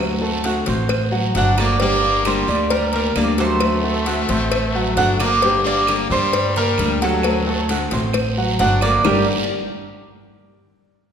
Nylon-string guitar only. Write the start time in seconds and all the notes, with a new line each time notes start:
0.00 D3 A3 C4 F#4
0.21 A3 C4 F#4
0.44 D3 A3 C4 F#4
0.67 A3 C4 F#4
0.89 muted nylon-string guitar stroke
1.34 D3 A3 C4 F#4
1.57 A3 C4 F#4
1.80 D3 G3 A#3 D4 G4
2.02 A#3 D4 G4
2.25 D3 G3 A#3 D4 G4
2.48 A#3 D4 G4
2.71 muted nylon-string guitar stroke
3.16 D3 G3 A#3 D4 G4
3.38 A#3 D4 G4
3.61 D3 A3 C4 F#4
3.84 A3 C4 F#4
4.07 D3 A3 C4 F#4
4.29 A3 C4 F#4
4.52 muted nylon-string guitar stroke
4.98 D3 A3 C4 F#4
5.20 A3 C4 F#4
5.42 D3 G3 A#3 D4 G4
5.65 A#3 D4 G4
5.88 D3 G3 A#3 D4 G4
6.11 A#3 D4 G4
6.33 muted nylon-string guitar stroke
6.78 D3 G3 A#3 D4 G4
7.01 A#3 D4 G4
7.24 D3 A3 C4 F#4
7.46 A3 C4 F#4
7.69 D3 A3 C4 F#4
7.92 A3 C4 F#4
8.14 muted nylon-string guitar stroke
8.60 D3 A3 C4 F#4
8.82 A3 C4 F#4
9.05 G2 D3 G3 A#3 D4 G4